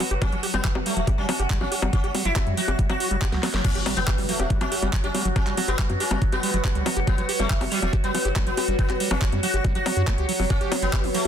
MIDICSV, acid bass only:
0, 0, Header, 1, 2, 480
1, 0, Start_track
1, 0, Tempo, 428571
1, 243, Time_signature, 4, 2, 24, 8
1, 12627, End_track
2, 0, Start_track
2, 0, Title_t, "Acid bass"
2, 0, Program_c, 0, 38
2, 2, Note_on_c, 0, 54, 106
2, 41, Note_off_c, 0, 54, 0
2, 122, Note_on_c, 0, 67, 110
2, 161, Note_off_c, 0, 67, 0
2, 242, Note_on_c, 0, 55, 84
2, 338, Note_off_c, 0, 55, 0
2, 362, Note_on_c, 0, 54, 102
2, 401, Note_off_c, 0, 54, 0
2, 482, Note_on_c, 0, 67, 101
2, 521, Note_off_c, 0, 67, 0
2, 602, Note_on_c, 0, 55, 76
2, 698, Note_off_c, 0, 55, 0
2, 722, Note_on_c, 0, 54, 104
2, 761, Note_off_c, 0, 54, 0
2, 842, Note_on_c, 0, 67, 103
2, 881, Note_off_c, 0, 67, 0
2, 962, Note_on_c, 0, 55, 84
2, 1059, Note_off_c, 0, 55, 0
2, 1082, Note_on_c, 0, 54, 102
2, 1121, Note_off_c, 0, 54, 0
2, 1202, Note_on_c, 0, 67, 100
2, 1241, Note_off_c, 0, 67, 0
2, 1322, Note_on_c, 0, 55, 77
2, 1418, Note_off_c, 0, 55, 0
2, 1442, Note_on_c, 0, 54, 103
2, 1481, Note_off_c, 0, 54, 0
2, 1562, Note_on_c, 0, 67, 104
2, 1601, Note_off_c, 0, 67, 0
2, 1682, Note_on_c, 0, 55, 84
2, 1778, Note_off_c, 0, 55, 0
2, 1802, Note_on_c, 0, 54, 104
2, 1840, Note_off_c, 0, 54, 0
2, 1922, Note_on_c, 0, 67, 102
2, 1961, Note_off_c, 0, 67, 0
2, 2042, Note_on_c, 0, 55, 79
2, 2138, Note_off_c, 0, 55, 0
2, 2162, Note_on_c, 0, 54, 105
2, 2201, Note_off_c, 0, 54, 0
2, 2282, Note_on_c, 0, 67, 104
2, 2321, Note_off_c, 0, 67, 0
2, 2402, Note_on_c, 0, 55, 79
2, 2498, Note_off_c, 0, 55, 0
2, 2522, Note_on_c, 0, 54, 102
2, 2561, Note_off_c, 0, 54, 0
2, 2642, Note_on_c, 0, 67, 104
2, 2681, Note_off_c, 0, 67, 0
2, 2762, Note_on_c, 0, 55, 77
2, 2859, Note_off_c, 0, 55, 0
2, 2883, Note_on_c, 0, 54, 108
2, 2921, Note_off_c, 0, 54, 0
2, 3002, Note_on_c, 0, 67, 103
2, 3041, Note_off_c, 0, 67, 0
2, 3122, Note_on_c, 0, 55, 79
2, 3218, Note_off_c, 0, 55, 0
2, 3242, Note_on_c, 0, 54, 100
2, 3281, Note_off_c, 0, 54, 0
2, 3363, Note_on_c, 0, 66, 76
2, 3459, Note_off_c, 0, 66, 0
2, 3483, Note_on_c, 0, 55, 79
2, 3547, Note_off_c, 0, 55, 0
2, 3602, Note_on_c, 0, 67, 100
2, 3667, Note_off_c, 0, 67, 0
2, 3722, Note_on_c, 0, 54, 106
2, 3818, Note_off_c, 0, 54, 0
2, 3842, Note_on_c, 0, 54, 104
2, 3906, Note_off_c, 0, 54, 0
2, 3962, Note_on_c, 0, 54, 81
2, 4059, Note_off_c, 0, 54, 0
2, 4083, Note_on_c, 0, 54, 99
2, 4121, Note_off_c, 0, 54, 0
2, 4203, Note_on_c, 0, 67, 106
2, 4241, Note_off_c, 0, 67, 0
2, 4323, Note_on_c, 0, 55, 76
2, 4419, Note_off_c, 0, 55, 0
2, 4443, Note_on_c, 0, 54, 105
2, 4481, Note_off_c, 0, 54, 0
2, 4563, Note_on_c, 0, 67, 101
2, 4601, Note_off_c, 0, 67, 0
2, 4683, Note_on_c, 0, 55, 81
2, 4779, Note_off_c, 0, 55, 0
2, 4803, Note_on_c, 0, 54, 104
2, 4841, Note_off_c, 0, 54, 0
2, 4923, Note_on_c, 0, 67, 105
2, 4961, Note_off_c, 0, 67, 0
2, 5042, Note_on_c, 0, 55, 83
2, 5138, Note_off_c, 0, 55, 0
2, 5162, Note_on_c, 0, 54, 100
2, 5201, Note_off_c, 0, 54, 0
2, 5283, Note_on_c, 0, 67, 102
2, 5321, Note_off_c, 0, 67, 0
2, 5403, Note_on_c, 0, 55, 81
2, 5499, Note_off_c, 0, 55, 0
2, 5523, Note_on_c, 0, 54, 100
2, 5561, Note_off_c, 0, 54, 0
2, 5643, Note_on_c, 0, 67, 106
2, 5681, Note_off_c, 0, 67, 0
2, 5763, Note_on_c, 0, 55, 81
2, 5859, Note_off_c, 0, 55, 0
2, 5883, Note_on_c, 0, 54, 105
2, 5921, Note_off_c, 0, 54, 0
2, 6003, Note_on_c, 0, 67, 104
2, 6041, Note_off_c, 0, 67, 0
2, 6122, Note_on_c, 0, 55, 80
2, 6219, Note_off_c, 0, 55, 0
2, 6242, Note_on_c, 0, 54, 100
2, 6281, Note_off_c, 0, 54, 0
2, 6362, Note_on_c, 0, 67, 106
2, 6401, Note_off_c, 0, 67, 0
2, 6482, Note_on_c, 0, 55, 81
2, 6579, Note_off_c, 0, 55, 0
2, 6603, Note_on_c, 0, 54, 103
2, 6641, Note_off_c, 0, 54, 0
2, 6723, Note_on_c, 0, 67, 108
2, 6761, Note_off_c, 0, 67, 0
2, 6843, Note_on_c, 0, 55, 79
2, 6939, Note_off_c, 0, 55, 0
2, 6963, Note_on_c, 0, 54, 98
2, 7001, Note_off_c, 0, 54, 0
2, 7082, Note_on_c, 0, 67, 105
2, 7121, Note_off_c, 0, 67, 0
2, 7202, Note_on_c, 0, 55, 76
2, 7298, Note_off_c, 0, 55, 0
2, 7322, Note_on_c, 0, 54, 102
2, 7361, Note_off_c, 0, 54, 0
2, 7443, Note_on_c, 0, 67, 101
2, 7481, Note_off_c, 0, 67, 0
2, 7563, Note_on_c, 0, 55, 82
2, 7659, Note_off_c, 0, 55, 0
2, 7683, Note_on_c, 0, 54, 103
2, 7721, Note_off_c, 0, 54, 0
2, 7803, Note_on_c, 0, 67, 109
2, 7841, Note_off_c, 0, 67, 0
2, 7923, Note_on_c, 0, 55, 82
2, 8019, Note_off_c, 0, 55, 0
2, 8043, Note_on_c, 0, 54, 102
2, 8081, Note_off_c, 0, 54, 0
2, 8163, Note_on_c, 0, 67, 100
2, 8201, Note_off_c, 0, 67, 0
2, 8283, Note_on_c, 0, 55, 78
2, 8379, Note_off_c, 0, 55, 0
2, 8403, Note_on_c, 0, 54, 100
2, 8441, Note_off_c, 0, 54, 0
2, 8523, Note_on_c, 0, 67, 105
2, 8561, Note_off_c, 0, 67, 0
2, 8644, Note_on_c, 0, 55, 82
2, 8739, Note_off_c, 0, 55, 0
2, 8764, Note_on_c, 0, 54, 105
2, 8802, Note_off_c, 0, 54, 0
2, 8883, Note_on_c, 0, 67, 98
2, 8921, Note_off_c, 0, 67, 0
2, 9003, Note_on_c, 0, 55, 80
2, 9099, Note_off_c, 0, 55, 0
2, 9123, Note_on_c, 0, 54, 100
2, 9161, Note_off_c, 0, 54, 0
2, 9243, Note_on_c, 0, 67, 103
2, 9281, Note_off_c, 0, 67, 0
2, 9363, Note_on_c, 0, 55, 81
2, 9459, Note_off_c, 0, 55, 0
2, 9483, Note_on_c, 0, 54, 102
2, 9521, Note_off_c, 0, 54, 0
2, 9603, Note_on_c, 0, 67, 103
2, 9641, Note_off_c, 0, 67, 0
2, 9723, Note_on_c, 0, 55, 83
2, 9819, Note_off_c, 0, 55, 0
2, 9843, Note_on_c, 0, 54, 97
2, 9881, Note_off_c, 0, 54, 0
2, 9963, Note_on_c, 0, 67, 103
2, 10001, Note_off_c, 0, 67, 0
2, 10083, Note_on_c, 0, 55, 78
2, 10179, Note_off_c, 0, 55, 0
2, 10203, Note_on_c, 0, 54, 103
2, 10241, Note_off_c, 0, 54, 0
2, 10323, Note_on_c, 0, 67, 96
2, 10361, Note_off_c, 0, 67, 0
2, 10443, Note_on_c, 0, 55, 78
2, 10539, Note_off_c, 0, 55, 0
2, 10563, Note_on_c, 0, 54, 104
2, 10601, Note_off_c, 0, 54, 0
2, 10683, Note_on_c, 0, 67, 100
2, 10721, Note_off_c, 0, 67, 0
2, 10803, Note_on_c, 0, 55, 80
2, 10899, Note_off_c, 0, 55, 0
2, 10923, Note_on_c, 0, 54, 104
2, 10961, Note_off_c, 0, 54, 0
2, 11043, Note_on_c, 0, 54, 74
2, 11107, Note_off_c, 0, 54, 0
2, 11163, Note_on_c, 0, 66, 106
2, 11227, Note_off_c, 0, 66, 0
2, 11283, Note_on_c, 0, 57, 102
2, 11347, Note_off_c, 0, 57, 0
2, 11403, Note_on_c, 0, 67, 79
2, 11499, Note_off_c, 0, 67, 0
2, 11523, Note_on_c, 0, 54, 105
2, 11561, Note_off_c, 0, 54, 0
2, 11643, Note_on_c, 0, 54, 82
2, 11707, Note_off_c, 0, 54, 0
2, 11763, Note_on_c, 0, 54, 101
2, 11801, Note_off_c, 0, 54, 0
2, 11883, Note_on_c, 0, 67, 107
2, 12002, Note_on_c, 0, 57, 101
2, 12019, Note_off_c, 0, 67, 0
2, 12067, Note_off_c, 0, 57, 0
2, 12123, Note_on_c, 0, 54, 107
2, 12161, Note_off_c, 0, 54, 0
2, 12243, Note_on_c, 0, 67, 103
2, 12363, Note_on_c, 0, 57, 101
2, 12380, Note_off_c, 0, 67, 0
2, 12427, Note_off_c, 0, 57, 0
2, 12483, Note_on_c, 0, 54, 105
2, 12521, Note_off_c, 0, 54, 0
2, 12627, End_track
0, 0, End_of_file